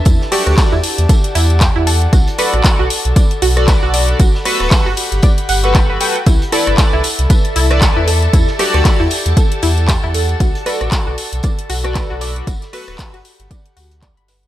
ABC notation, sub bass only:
X:1
M:4/4
L:1/16
Q:"Swing 16ths" 1/4=116
K:G
V:1 name="Sub bass" clef=bass
E,, z2 D,, z E,, z E,, z2 E,,2 z E,,2 z | B,,, z2 A,,, z B,,, z B,,, z2 B,,,2 z B,,,2 z | G,,, z2 D,,, z G,,, z G,,, z2 G,,,2 z G,,, z2 | C,, z2 G,,, z C,, z C,, z2 C,,2 z E,,2 z |
E,, z2 D,, z E,, z E,, z2 E,,2 z E,,2 z | B,,, z2 A,,, z B,,, z B,,, z2 B,,,2 z B,,,2 z | G,,, z2 D,,, z G,,, z G,,, z2 D,,2 z G,,,2 z |]